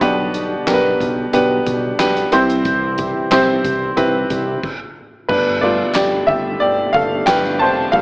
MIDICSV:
0, 0, Header, 1, 5, 480
1, 0, Start_track
1, 0, Key_signature, 1, "major"
1, 0, Tempo, 660066
1, 9, Time_signature, 4, 2, 24, 8
1, 5829, End_track
2, 0, Start_track
2, 0, Title_t, "Upright piano"
2, 0, Program_c, 0, 0
2, 0, Control_c, 0, 64, 127
2, 7, Note_on_c, 0, 59, 86
2, 7, Note_on_c, 0, 62, 74
2, 8, Note_on_c, 0, 47, 74
2, 9, Note_on_c, 0, 67, 77
2, 12, Note_on_c, 0, 71, 90
2, 18, Control_c, 0, 64, 0
2, 162, Control_c, 0, 64, 127
2, 406, Note_off_c, 0, 59, 0
2, 406, Note_off_c, 0, 62, 0
2, 407, Note_off_c, 0, 67, 0
2, 408, Note_off_c, 0, 71, 0
2, 485, Note_on_c, 0, 59, 82
2, 487, Note_on_c, 0, 62, 69
2, 488, Note_on_c, 0, 67, 77
2, 490, Note_on_c, 0, 70, 72
2, 536, Note_on_c, 0, 71, 91
2, 537, Note_off_c, 0, 70, 0
2, 700, Note_off_c, 0, 47, 0
2, 885, Note_off_c, 0, 59, 0
2, 886, Note_off_c, 0, 62, 0
2, 887, Note_off_c, 0, 67, 0
2, 911, Note_off_c, 0, 71, 0
2, 969, Note_on_c, 0, 59, 86
2, 970, Note_on_c, 0, 62, 78
2, 970, Note_on_c, 0, 67, 73
2, 973, Note_on_c, 0, 71, 84
2, 1367, Note_off_c, 0, 59, 0
2, 1368, Note_off_c, 0, 62, 0
2, 1368, Note_off_c, 0, 67, 0
2, 1369, Note_off_c, 0, 71, 0
2, 1446, Note_on_c, 0, 59, 82
2, 1448, Note_on_c, 0, 62, 83
2, 1450, Note_on_c, 0, 67, 78
2, 1451, Note_on_c, 0, 71, 92
2, 1680, Note_off_c, 0, 67, 0
2, 1687, Note_on_c, 0, 60, 79
2, 1688, Note_off_c, 0, 59, 0
2, 1689, Note_off_c, 0, 62, 0
2, 1689, Note_on_c, 0, 48, 73
2, 1689, Note_on_c, 0, 64, 80
2, 1690, Note_off_c, 0, 71, 0
2, 1691, Note_on_c, 0, 67, 73
2, 1691, Note_on_c, 0, 72, 98
2, 1700, Control_c, 0, 64, 0
2, 1817, Control_c, 0, 64, 127
2, 2285, Note_off_c, 0, 60, 0
2, 2286, Note_off_c, 0, 64, 0
2, 2287, Note_off_c, 0, 67, 0
2, 2287, Note_off_c, 0, 72, 0
2, 2380, Note_off_c, 0, 48, 0
2, 2406, Note_on_c, 0, 60, 82
2, 2409, Note_on_c, 0, 64, 77
2, 2410, Note_on_c, 0, 67, 73
2, 2411, Note_on_c, 0, 72, 92
2, 2806, Note_off_c, 0, 60, 0
2, 2807, Note_off_c, 0, 64, 0
2, 2807, Note_off_c, 0, 67, 0
2, 2808, Note_off_c, 0, 72, 0
2, 2885, Note_on_c, 0, 60, 83
2, 2887, Note_on_c, 0, 64, 73
2, 2887, Note_on_c, 0, 67, 73
2, 2889, Note_on_c, 0, 71, 89
2, 3285, Note_off_c, 0, 60, 0
2, 3286, Note_off_c, 0, 64, 0
2, 3286, Note_off_c, 0, 67, 0
2, 3287, Note_off_c, 0, 71, 0
2, 3380, Control_c, 0, 64, 0
2, 3843, Note_on_c, 0, 71, 87
2, 3857, Note_on_c, 0, 62, 65
2, 3967, Control_c, 0, 64, 127
2, 4069, Note_off_c, 0, 71, 0
2, 4077, Note_off_c, 0, 62, 0
2, 4081, Note_on_c, 0, 74, 78
2, 4084, Note_on_c, 0, 55, 53
2, 4090, Note_on_c, 0, 57, 51
2, 4094, Note_on_c, 0, 59, 59
2, 4096, Note_on_c, 0, 65, 59
2, 4311, Note_off_c, 0, 74, 0
2, 4316, Note_off_c, 0, 65, 0
2, 4322, Note_on_c, 0, 74, 82
2, 4335, Note_on_c, 0, 67, 70
2, 4549, Note_off_c, 0, 74, 0
2, 4556, Note_off_c, 0, 67, 0
2, 4558, Note_on_c, 0, 76, 87
2, 4574, Note_on_c, 0, 67, 67
2, 4613, Note_off_c, 0, 76, 0
2, 4627, Note_off_c, 0, 67, 0
2, 4778, Note_off_c, 0, 55, 0
2, 4780, Note_off_c, 0, 57, 0
2, 4783, Note_off_c, 0, 59, 0
2, 4799, Note_on_c, 0, 74, 89
2, 4815, Note_on_c, 0, 67, 69
2, 5035, Note_off_c, 0, 67, 0
2, 5038, Note_on_c, 0, 77, 99
2, 5051, Note_off_c, 0, 74, 0
2, 5054, Note_on_c, 0, 69, 70
2, 5275, Note_off_c, 0, 69, 0
2, 5279, Note_on_c, 0, 79, 102
2, 5291, Note_off_c, 0, 77, 0
2, 5297, Note_on_c, 0, 71, 81
2, 5507, Note_off_c, 0, 79, 0
2, 5516, Note_off_c, 0, 71, 0
2, 5522, Note_on_c, 0, 81, 96
2, 5536, Note_on_c, 0, 72, 69
2, 5748, Note_off_c, 0, 81, 0
2, 5756, Note_off_c, 0, 72, 0
2, 5759, Note_on_c, 0, 77, 96
2, 5765, Note_on_c, 0, 55, 57
2, 5769, Note_on_c, 0, 57, 55
2, 5774, Note_on_c, 0, 59, 62
2, 5774, Note_on_c, 0, 69, 74
2, 5829, Note_off_c, 0, 55, 0
2, 5829, Note_off_c, 0, 57, 0
2, 5829, Note_off_c, 0, 59, 0
2, 5829, Note_off_c, 0, 69, 0
2, 5829, Note_off_c, 0, 77, 0
2, 5829, End_track
3, 0, Start_track
3, 0, Title_t, "Tonewheel organ"
3, 0, Program_c, 1, 16
3, 0, Note_on_c, 1, 67, 67
3, 8, Note_on_c, 1, 50, 59
3, 10, Note_on_c, 1, 47, 68
3, 10, Note_on_c, 1, 62, 61
3, 12, Note_on_c, 1, 55, 63
3, 1673, Note_off_c, 1, 47, 0
3, 1673, Note_off_c, 1, 50, 0
3, 1674, Note_off_c, 1, 62, 0
3, 1692, Note_on_c, 1, 48, 70
3, 1693, Note_on_c, 1, 52, 66
3, 1693, Note_on_c, 1, 64, 64
3, 3341, Note_off_c, 1, 67, 0
3, 3342, Note_off_c, 1, 55, 0
3, 3354, Note_off_c, 1, 48, 0
3, 3355, Note_off_c, 1, 52, 0
3, 3355, Note_off_c, 1, 64, 0
3, 3847, Note_on_c, 1, 47, 62
3, 3847, Note_on_c, 1, 67, 73
3, 3848, Note_on_c, 1, 55, 58
3, 3848, Note_on_c, 1, 57, 60
3, 3849, Note_on_c, 1, 50, 67
3, 5748, Note_off_c, 1, 67, 0
3, 5770, Note_on_c, 1, 69, 78
3, 5829, Note_off_c, 1, 47, 0
3, 5829, Note_off_c, 1, 50, 0
3, 5829, Note_off_c, 1, 55, 0
3, 5829, Note_off_c, 1, 57, 0
3, 5829, Note_off_c, 1, 69, 0
3, 5829, End_track
4, 0, Start_track
4, 0, Title_t, "Analog synth bass"
4, 0, Program_c, 2, 38
4, 10, Note_on_c, 2, 35, 103
4, 403, Note_off_c, 2, 35, 0
4, 490, Note_on_c, 2, 35, 92
4, 686, Note_off_c, 2, 35, 0
4, 730, Note_on_c, 2, 35, 92
4, 927, Note_off_c, 2, 35, 0
4, 969, Note_on_c, 2, 35, 98
4, 1166, Note_off_c, 2, 35, 0
4, 1211, Note_on_c, 2, 35, 102
4, 1407, Note_off_c, 2, 35, 0
4, 1451, Note_on_c, 2, 35, 91
4, 1647, Note_off_c, 2, 35, 0
4, 1690, Note_on_c, 2, 36, 112
4, 2280, Note_off_c, 2, 36, 0
4, 2412, Note_on_c, 2, 36, 96
4, 2608, Note_off_c, 2, 36, 0
4, 2650, Note_on_c, 2, 36, 96
4, 2847, Note_off_c, 2, 36, 0
4, 2890, Note_on_c, 2, 36, 108
4, 3087, Note_off_c, 2, 36, 0
4, 3130, Note_on_c, 2, 36, 97
4, 3327, Note_off_c, 2, 36, 0
4, 3851, Note_on_c, 2, 31, 111
4, 4244, Note_off_c, 2, 31, 0
4, 4329, Note_on_c, 2, 31, 108
4, 4526, Note_off_c, 2, 31, 0
4, 4569, Note_on_c, 2, 31, 97
4, 4766, Note_off_c, 2, 31, 0
4, 4809, Note_on_c, 2, 31, 115
4, 5006, Note_off_c, 2, 31, 0
4, 5050, Note_on_c, 2, 31, 110
4, 5247, Note_off_c, 2, 31, 0
4, 5291, Note_on_c, 2, 31, 105
4, 5531, Note_on_c, 2, 29, 89
4, 5542, Note_off_c, 2, 31, 0
4, 5727, Note_off_c, 2, 29, 0
4, 5768, Note_on_c, 2, 31, 91
4, 5829, Note_off_c, 2, 31, 0
4, 5829, End_track
5, 0, Start_track
5, 0, Title_t, "Drums"
5, 9, Note_on_c, 9, 36, 95
5, 9, Note_on_c, 9, 42, 78
5, 82, Note_off_c, 9, 36, 0
5, 82, Note_off_c, 9, 42, 0
5, 248, Note_on_c, 9, 42, 65
5, 321, Note_off_c, 9, 42, 0
5, 490, Note_on_c, 9, 42, 75
5, 491, Note_on_c, 9, 38, 92
5, 492, Note_on_c, 9, 39, 75
5, 562, Note_off_c, 9, 42, 0
5, 563, Note_off_c, 9, 38, 0
5, 565, Note_off_c, 9, 39, 0
5, 731, Note_on_c, 9, 36, 82
5, 735, Note_on_c, 9, 42, 62
5, 804, Note_off_c, 9, 36, 0
5, 808, Note_off_c, 9, 42, 0
5, 970, Note_on_c, 9, 42, 75
5, 1042, Note_off_c, 9, 42, 0
5, 1211, Note_on_c, 9, 36, 94
5, 1211, Note_on_c, 9, 42, 68
5, 1283, Note_off_c, 9, 42, 0
5, 1284, Note_off_c, 9, 36, 0
5, 1449, Note_on_c, 9, 42, 92
5, 1451, Note_on_c, 9, 38, 108
5, 1453, Note_on_c, 9, 39, 89
5, 1522, Note_off_c, 9, 42, 0
5, 1524, Note_off_c, 9, 38, 0
5, 1525, Note_off_c, 9, 39, 0
5, 1572, Note_on_c, 9, 38, 30
5, 1575, Note_on_c, 9, 42, 52
5, 1645, Note_off_c, 9, 38, 0
5, 1648, Note_off_c, 9, 42, 0
5, 1688, Note_on_c, 9, 42, 81
5, 1761, Note_off_c, 9, 42, 0
5, 1815, Note_on_c, 9, 42, 58
5, 1888, Note_off_c, 9, 42, 0
5, 1927, Note_on_c, 9, 42, 76
5, 1930, Note_on_c, 9, 36, 106
5, 2000, Note_off_c, 9, 42, 0
5, 2003, Note_off_c, 9, 36, 0
5, 2166, Note_on_c, 9, 42, 63
5, 2172, Note_on_c, 9, 36, 95
5, 2239, Note_off_c, 9, 42, 0
5, 2245, Note_off_c, 9, 36, 0
5, 2409, Note_on_c, 9, 42, 82
5, 2410, Note_on_c, 9, 38, 94
5, 2411, Note_on_c, 9, 39, 77
5, 2482, Note_off_c, 9, 42, 0
5, 2483, Note_off_c, 9, 38, 0
5, 2484, Note_off_c, 9, 39, 0
5, 2651, Note_on_c, 9, 36, 82
5, 2652, Note_on_c, 9, 42, 62
5, 2724, Note_off_c, 9, 36, 0
5, 2725, Note_off_c, 9, 42, 0
5, 2888, Note_on_c, 9, 42, 79
5, 2891, Note_on_c, 9, 36, 89
5, 2961, Note_off_c, 9, 42, 0
5, 2963, Note_off_c, 9, 36, 0
5, 3128, Note_on_c, 9, 42, 68
5, 3130, Note_on_c, 9, 36, 100
5, 3201, Note_off_c, 9, 42, 0
5, 3203, Note_off_c, 9, 36, 0
5, 3370, Note_on_c, 9, 36, 99
5, 3370, Note_on_c, 9, 49, 86
5, 3443, Note_off_c, 9, 36, 0
5, 3443, Note_off_c, 9, 49, 0
5, 3849, Note_on_c, 9, 49, 93
5, 3850, Note_on_c, 9, 36, 105
5, 3921, Note_off_c, 9, 49, 0
5, 3922, Note_off_c, 9, 36, 0
5, 4088, Note_on_c, 9, 51, 53
5, 4160, Note_off_c, 9, 51, 0
5, 4211, Note_on_c, 9, 51, 36
5, 4283, Note_off_c, 9, 51, 0
5, 4322, Note_on_c, 9, 39, 102
5, 4330, Note_on_c, 9, 38, 96
5, 4331, Note_off_c, 9, 39, 0
5, 4331, Note_on_c, 9, 39, 79
5, 4403, Note_off_c, 9, 38, 0
5, 4404, Note_off_c, 9, 39, 0
5, 4570, Note_on_c, 9, 36, 83
5, 4571, Note_on_c, 9, 51, 54
5, 4643, Note_off_c, 9, 36, 0
5, 4644, Note_off_c, 9, 51, 0
5, 4807, Note_on_c, 9, 51, 61
5, 4880, Note_off_c, 9, 51, 0
5, 5050, Note_on_c, 9, 36, 97
5, 5050, Note_on_c, 9, 51, 60
5, 5122, Note_off_c, 9, 51, 0
5, 5123, Note_off_c, 9, 36, 0
5, 5285, Note_on_c, 9, 39, 77
5, 5287, Note_on_c, 9, 51, 78
5, 5289, Note_on_c, 9, 38, 108
5, 5291, Note_off_c, 9, 39, 0
5, 5291, Note_on_c, 9, 39, 94
5, 5360, Note_off_c, 9, 51, 0
5, 5362, Note_off_c, 9, 38, 0
5, 5363, Note_off_c, 9, 39, 0
5, 5410, Note_on_c, 9, 38, 29
5, 5413, Note_on_c, 9, 51, 48
5, 5483, Note_off_c, 9, 38, 0
5, 5486, Note_off_c, 9, 51, 0
5, 5527, Note_on_c, 9, 51, 63
5, 5600, Note_off_c, 9, 51, 0
5, 5768, Note_on_c, 9, 51, 64
5, 5769, Note_on_c, 9, 36, 104
5, 5829, Note_off_c, 9, 36, 0
5, 5829, Note_off_c, 9, 51, 0
5, 5829, End_track
0, 0, End_of_file